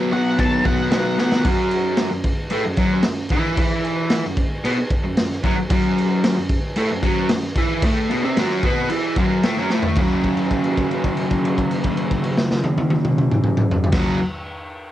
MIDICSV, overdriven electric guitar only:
0, 0, Header, 1, 3, 480
1, 0, Start_track
1, 0, Tempo, 533333
1, 1293, Time_signature, 4, 2, 24, 8
1, 13425, End_track
2, 0, Start_track
2, 0, Title_t, "Overdriven electric guitar"
2, 0, Program_c, 0, 29
2, 0, Note_on_c, 0, 47, 98
2, 0, Note_on_c, 0, 54, 109
2, 0, Note_on_c, 0, 59, 115
2, 97, Note_off_c, 0, 47, 0
2, 105, Note_off_c, 0, 54, 0
2, 107, Note_on_c, 0, 47, 95
2, 111, Note_off_c, 0, 59, 0
2, 115, Note_on_c, 0, 54, 90
2, 122, Note_on_c, 0, 59, 97
2, 337, Note_off_c, 0, 47, 0
2, 341, Note_off_c, 0, 54, 0
2, 348, Note_on_c, 0, 47, 107
2, 351, Note_off_c, 0, 59, 0
2, 352, Note_on_c, 0, 54, 106
2, 362, Note_on_c, 0, 59, 106
2, 568, Note_off_c, 0, 47, 0
2, 574, Note_off_c, 0, 54, 0
2, 579, Note_on_c, 0, 47, 88
2, 585, Note_on_c, 0, 54, 85
2, 587, Note_off_c, 0, 59, 0
2, 598, Note_on_c, 0, 59, 86
2, 807, Note_off_c, 0, 47, 0
2, 814, Note_off_c, 0, 54, 0
2, 818, Note_on_c, 0, 47, 93
2, 823, Note_off_c, 0, 59, 0
2, 825, Note_on_c, 0, 54, 99
2, 834, Note_on_c, 0, 59, 102
2, 1059, Note_off_c, 0, 47, 0
2, 1061, Note_off_c, 0, 54, 0
2, 1066, Note_off_c, 0, 59, 0
2, 1069, Note_on_c, 0, 47, 83
2, 1072, Note_on_c, 0, 54, 88
2, 1077, Note_on_c, 0, 59, 91
2, 1286, Note_off_c, 0, 47, 0
2, 1287, Note_off_c, 0, 54, 0
2, 1290, Note_off_c, 0, 59, 0
2, 1302, Note_on_c, 0, 42, 99
2, 1309, Note_on_c, 0, 54, 116
2, 1884, Note_off_c, 0, 42, 0
2, 1891, Note_off_c, 0, 54, 0
2, 1895, Note_on_c, 0, 42, 76
2, 2084, Note_off_c, 0, 42, 0
2, 2257, Note_on_c, 0, 45, 103
2, 2267, Note_on_c, 0, 57, 110
2, 2366, Note_off_c, 0, 45, 0
2, 2371, Note_off_c, 0, 57, 0
2, 2383, Note_on_c, 0, 42, 77
2, 2485, Note_off_c, 0, 42, 0
2, 2496, Note_on_c, 0, 42, 95
2, 2506, Note_on_c, 0, 54, 107
2, 2724, Note_off_c, 0, 42, 0
2, 2729, Note_off_c, 0, 54, 0
2, 2752, Note_on_c, 0, 42, 74
2, 2931, Note_off_c, 0, 42, 0
2, 2986, Note_on_c, 0, 52, 94
2, 2996, Note_on_c, 0, 64, 103
2, 3807, Note_off_c, 0, 52, 0
2, 3812, Note_off_c, 0, 64, 0
2, 3836, Note_on_c, 0, 42, 76
2, 4012, Note_off_c, 0, 42, 0
2, 4180, Note_on_c, 0, 47, 99
2, 4188, Note_on_c, 0, 59, 101
2, 4285, Note_off_c, 0, 47, 0
2, 4289, Note_off_c, 0, 59, 0
2, 4545, Note_on_c, 0, 42, 73
2, 4654, Note_off_c, 0, 42, 0
2, 4675, Note_on_c, 0, 42, 69
2, 4851, Note_off_c, 0, 42, 0
2, 4898, Note_on_c, 0, 42, 94
2, 4914, Note_on_c, 0, 54, 98
2, 5004, Note_off_c, 0, 42, 0
2, 5012, Note_off_c, 0, 54, 0
2, 5132, Note_on_c, 0, 42, 101
2, 5148, Note_on_c, 0, 54, 119
2, 5721, Note_off_c, 0, 42, 0
2, 5729, Note_off_c, 0, 54, 0
2, 5737, Note_on_c, 0, 42, 80
2, 5923, Note_off_c, 0, 42, 0
2, 6089, Note_on_c, 0, 45, 106
2, 6098, Note_on_c, 0, 57, 112
2, 6200, Note_off_c, 0, 45, 0
2, 6204, Note_off_c, 0, 57, 0
2, 6215, Note_on_c, 0, 42, 78
2, 6312, Note_off_c, 0, 42, 0
2, 6323, Note_on_c, 0, 42, 86
2, 6334, Note_on_c, 0, 54, 105
2, 6557, Note_off_c, 0, 42, 0
2, 6563, Note_off_c, 0, 54, 0
2, 6572, Note_on_c, 0, 42, 73
2, 6761, Note_off_c, 0, 42, 0
2, 6817, Note_on_c, 0, 52, 94
2, 6822, Note_on_c, 0, 64, 104
2, 7045, Note_off_c, 0, 52, 0
2, 7047, Note_off_c, 0, 64, 0
2, 7056, Note_on_c, 0, 45, 106
2, 7064, Note_on_c, 0, 57, 116
2, 7284, Note_off_c, 0, 45, 0
2, 7288, Note_off_c, 0, 57, 0
2, 7291, Note_on_c, 0, 47, 94
2, 7296, Note_on_c, 0, 59, 106
2, 7402, Note_off_c, 0, 47, 0
2, 7404, Note_off_c, 0, 59, 0
2, 7410, Note_on_c, 0, 48, 95
2, 7423, Note_on_c, 0, 60, 101
2, 7522, Note_off_c, 0, 48, 0
2, 7528, Note_off_c, 0, 60, 0
2, 7538, Note_on_c, 0, 42, 101
2, 7550, Note_on_c, 0, 54, 109
2, 7766, Note_off_c, 0, 42, 0
2, 7772, Note_off_c, 0, 54, 0
2, 7776, Note_on_c, 0, 47, 91
2, 7789, Note_on_c, 0, 59, 116
2, 8005, Note_off_c, 0, 47, 0
2, 8010, Note_on_c, 0, 52, 96
2, 8012, Note_off_c, 0, 59, 0
2, 8024, Note_on_c, 0, 64, 107
2, 8243, Note_off_c, 0, 52, 0
2, 8249, Note_off_c, 0, 64, 0
2, 8254, Note_on_c, 0, 42, 93
2, 8268, Note_on_c, 0, 54, 97
2, 8485, Note_off_c, 0, 42, 0
2, 8492, Note_off_c, 0, 54, 0
2, 8498, Note_on_c, 0, 45, 86
2, 8506, Note_on_c, 0, 57, 102
2, 8607, Note_off_c, 0, 45, 0
2, 8611, Note_off_c, 0, 57, 0
2, 8618, Note_on_c, 0, 42, 100
2, 8630, Note_on_c, 0, 54, 104
2, 8728, Note_off_c, 0, 42, 0
2, 8734, Note_off_c, 0, 54, 0
2, 8738, Note_on_c, 0, 45, 88
2, 8751, Note_on_c, 0, 57, 103
2, 8968, Note_off_c, 0, 45, 0
2, 8970, Note_on_c, 0, 42, 104
2, 8975, Note_off_c, 0, 57, 0
2, 8988, Note_on_c, 0, 49, 98
2, 9008, Note_on_c, 0, 54, 114
2, 12477, Note_off_c, 0, 42, 0
2, 12487, Note_off_c, 0, 49, 0
2, 12497, Note_off_c, 0, 54, 0
2, 12534, Note_on_c, 0, 42, 97
2, 12554, Note_on_c, 0, 49, 99
2, 12568, Note_on_c, 0, 54, 117
2, 12751, Note_off_c, 0, 42, 0
2, 12762, Note_off_c, 0, 49, 0
2, 12769, Note_off_c, 0, 54, 0
2, 13425, End_track
3, 0, Start_track
3, 0, Title_t, "Muted overdriven electric guitar strokes"
3, 4308, Note_on_c, 9, 29, 63
3, 4398, Note_off_c, 9, 29, 0
3, 5022, Note_on_c, 9, 29, 61
3, 5112, Note_off_c, 9, 29, 0
3, 13425, End_track
0, 0, End_of_file